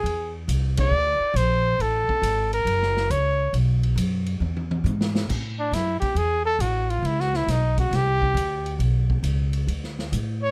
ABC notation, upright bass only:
X:1
M:4/4
L:1/8
Q:"Swing" 1/4=137
K:A
V:1 name="Upright bass" clef=bass
E,,2 =C,,2 D,, z _B,,,2 | A,,, z G,,,2 F,,,2 C,,2 | B,,,2 F,,2 E,,2 G,,2 | A,,2 F,, z E,,2 A,,,2 |
C,,2 B,,,2 =C,,2 D,,2 | B,,,2 C,,2 D,,2 A,,2 |]